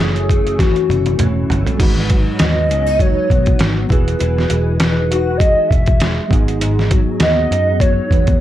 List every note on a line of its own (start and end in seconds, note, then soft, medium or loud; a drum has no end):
0.00 0.72 F#1 medium
0.00 1.79 F#2 medium
0.00 0.58 E3 medium
0.00 0.28 A3 medium
0.00 1.15 A3 medium
0.00 1.87 C#4 medium
0.00 1.16 E4 medium
0.00 1.17 F#4 medium
0.00 0.60 G#4 medium
0.00 1.17 C#5 medium
0.16 closed hi-hat soft
0.29 0.88 A3 medium
0.29 kick medium
0.29 closed hi-hat medium
0.47 closed hi-hat soft
0.59 1.18 E3 medium
0.59 1.19 F#4 medium
0.59 kick medium
0.59 snare medium
0.59 closed hi-hat medium
0.76 closed hi-hat soft
0.89 1.14 F#1 medium
0.89 1.49 A3 medium
0.89 closed hi-hat medium
0.89 high tom medium
1.06 closed hi-hat medium
1.06 high tom medium
1.18 1.44 E1 medium
1.18 1.86 E3 medium
1.18 1.79 A3 soft
1.18 1.79 E4 soft
1.18 1.79 F#4 soft
1.18 1.80 C#5 medium
1.18 closed hi-hat medium
1.18 mid tom medium
1.50 1.63 G1 medium
1.50 1.86 A3 medium
1.50 closed hi-hat medium
1.50 floor tom medium
1.66 closed hi-hat medium
1.66 floor tom medium
1.77 2.28 G#1 medium
1.77 3.96 G#2 medium
1.77 3.84 G#3 medium
1.77 3.85 D#4 medium
1.77 3.86 F#4 medium
1.77 kick loud
1.77 closed hi-hat medium
1.77 crash medium
1.82 3.87 B4 medium
1.98 snare soft
2.09 2.99 F#3 medium
2.09 kick medium
2.09 closed hi-hat medium
2.39 2.71 D#2 medium
2.39 3.29 B3 medium
2.39 3.02 D#5 loud
2.39 snare loud
2.39 closed hi-hat medium
2.69 3.19 C#2 medium
2.69 2.86 C#4 medium
2.69 closed hi-hat medium
2.86 3.97 D#4 medium
2.99 3.60 F#3 medium
2.99 3.61 C#5 loud
2.99 kick medium
2.99 closed hi-hat medium
3.29 3.54 B1 medium
3.29 4.49 B3 medium
3.29 kick medium
3.29 closed hi-hat medium
3.46 kick medium
3.46 closed hi-hat medium
3.59 3.85 G#1 medium
3.59 3.88 F#3 medium
3.59 snare loud
3.59 closed hi-hat medium
3.87 4.14 E1 medium
3.87 4.18 E3 medium
3.87 6.24 F#3 medium
3.87 6.26 E4 medium
3.87 6.26 F#4 medium
3.87 4.76 B4 medium
3.87 kick loud
3.92 6.27 G#4 medium
3.92 closed hi-hat medium
4.08 closed hi-hat medium
4.19 4.45 E1 loud
4.19 6.36 E3 medium
4.19 closed hi-hat medium
4.38 snare soft
4.49 5.53 E1 medium
4.49 5.39 G#3 medium
4.49 closed hi-hat medium
4.79 7.51 D#4 medium
4.79 5.39 B4 medium
4.79 snare loud
4.79 closed hi-hat medium
5.11 6.64 F#4 medium
5.11 closed hi-hat medium
5.37 6.01 G#3 medium
5.37 5.70 D#5 loud
5.37 kick medium
5.37 closed hi-hat medium
5.69 6.19 E1 medium
5.69 6.29 E5 loud
5.69 kick medium
5.69 closed hi-hat medium
5.86 kick medium
5.86 closed hi-hat soft
6.00 6.94 G#3 medium
6.00 snare loud
6.00 closed hi-hat medium
6.28 7.03 G#1 medium
6.28 6.60 G#2 medium
6.28 8.40 F#3 medium
6.28 8.40 B3 medium
6.28 8.40 D#4 medium
6.28 kick loud
6.33 8.40 G#4 medium
6.33 closed hi-hat medium
6.48 closed hi-hat medium
6.61 8.40 G#2 medium
6.61 closed hi-hat medium
6.79 snare soft
6.91 7.79 F#3 medium
6.91 kick medium
6.91 closed hi-hat medium
7.20 7.45 D#2 loud
7.20 8.10 B3 medium
7.20 7.82 D#5 loud
7.20 snare loud
7.20 closed hi-hat medium
7.51 7.99 F#2 medium
7.51 8.40 D#4 medium
7.51 closed hi-hat medium
7.80 8.39 F#3 medium
7.80 8.40 C#5 loud
7.80 kick medium
7.80 closed hi-hat medium
8.11 8.35 E2 medium
8.11 8.40 B3 medium
8.11 kick medium
8.11 closed hi-hat medium
8.27 kick medium
8.27 closed hi-hat medium